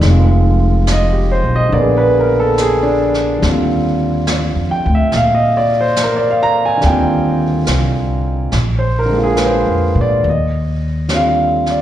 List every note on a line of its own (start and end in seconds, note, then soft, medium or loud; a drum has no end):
0.00 1.40 F1 medium
0.00 1.71 D#3 medium
0.00 1.72 G#3 soft
0.00 brush sweep soft
0.00 snare soft
0.06 1.74 C4 soft
0.10 1.76 F4 medium
0.87 snare soft
0.87 hi-hat pedal soft
0.92 1.18 D#5 medium
1.12 1.42 G4 soft
1.32 1.51 C5 medium
1.43 1.70 B1 medium
1.56 1.71 D#5 medium
1.69 3.38 A#1 medium
1.69 3.37 D3 medium
1.69 brush sweep soft
1.73 3.42 A#3 soft
1.73 3.44 B3 medium
1.73 2.00 D5 medium
1.81 2.59 G#4 medium
1.97 2.27 B4 medium
2.20 2.38 A#4 medium
2.40 2.55 A4 medium
2.58 2.87 G#4 medium
2.58 snare soft
2.58 hi-hat pedal medium
2.83 3.01 D4 medium
3.14 snare soft
3.38 4.51 D#2 medium
3.38 6.76 D3 soft
3.38 6.80 G3 soft
3.38 brush sweep soft
3.38 snare soft
3.45 6.83 C4 soft
3.45 6.85 F4 medium
4.27 snare soft
4.27 hi-hat pedal medium
4.56 4.82 F2 medium
4.71 4.91 G5 medium
4.86 5.11 D2 medium
4.95 5.10 E5 medium
5.12 6.79 A#2 medium
5.12 brush sweep soft
5.12 snare soft
5.16 5.42 F5 medium
5.35 5.65 D#5 medium
5.57 5.76 D5 medium
5.81 5.95 C5 medium
5.96 snare soft
5.96 hi-hat pedal medium
6.03 6.19 A#4 medium
6.17 6.25 D5 medium
6.30 6.56 F5 medium
6.43 6.62 A#5 medium
6.65 6.80 G#5 medium
6.77 8.50 D3 medium
6.77 8.52 G3 soft
6.77 brush sweep soft
6.77 snare soft
6.83 7.64 D#2 medium
6.83 8.54 C4 medium
6.83 7.19 G5 medium
6.88 8.55 F4 medium
7.67 8.49 C2 medium
7.67 snare soft
7.67 hi-hat pedal medium
8.52 9.63 A#1 medium
8.52 brush sweep soft
8.52 snare soft
8.79 9.08 C5 medium
8.99 9.18 A#4 medium
9.06 10.22 D3 medium
9.10 10.24 G#3 medium
9.10 10.26 A#3 medium
9.17 10.28 F4 medium
9.24 10.06 G#4 medium
9.37 9.40 B4 medium
9.37 snare soft
9.37 hi-hat pedal medium
9.46 9.96 C5 medium
9.67 9.93 F2 medium
9.95 10.22 A#2 medium
10.01 10.27 D5 medium
10.23 11.82 D#2 medium
10.23 brush sweep soft
10.30 11.15 D#5 medium
11.08 11.82 D3 soft
11.08 11.82 G3 soft
11.08 11.82 C4 soft
11.08 snare soft
11.08 hi-hat pedal soft
11.14 11.82 F4 soft
11.14 11.66 F5 medium
11.66 snare soft
11.70 11.82 D5 medium